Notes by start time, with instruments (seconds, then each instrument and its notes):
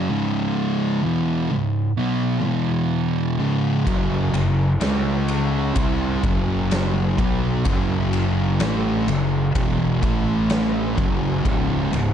0.09 distorted electric guitar C#2 G#2 C#3
1.04 distorted electric guitar E2 B2 E3
1.51 distorted electric guitar C#2 G#2
1.98 distorted electric guitar B2 F#3 B3
2.45 distorted electric guitar E2 B2 E3
3.39 distorted electric guitar C#2 G#2 C#3
3.86 fingered electric bass F#1, distorted electric guitar F#2 C#3 F#3, kick, ride
4.33 fingered electric bass F#1, distorted electric guitar F#2 C#3, ride
4.80 fingered electric bass C#2, distorted electric guitar C#3 G#3 C#4, snare, ride
5.28 ride
5.76 fingered electric bass C2, distorted electric guitar C3 G3 C4, kick, ride
6.23 fingered electric bass F#1, distorted electric guitar F#2 C#3 F#3, kick, ride
6.71 snare, ride
7.18 fingered electric bass B1, distorted electric guitar B2 F#3 B3, kick, ride
7.65 fingered electric bass F#1, distorted electric guitar F#2 C#3 F#3, kick, ride
8.13 ride
8.60 fingered electric bass A1, distorted electric guitar A2 E3 A3, snare, ride
9.07 fingered electric bass F#1, distorted electric guitar F#2 C#3, ride
9.55 fingered electric bass E1, distorted electric guitar E2 B2 E3, kick, ride
10.02 fingered electric bass A1, distorted electric guitar A2 E3 A3, kick, ride
10.50 snare, ride
10.96 fingered electric bass F#1, distorted electric guitar F#2 C#3 F#3, kick, ride
11.44 fingered electric bass C#1, distorted electric guitar C#2 G#2 C#3, kick, ride
11.91 fingered electric bass C#1, distorted electric guitar C#2 G#2, ride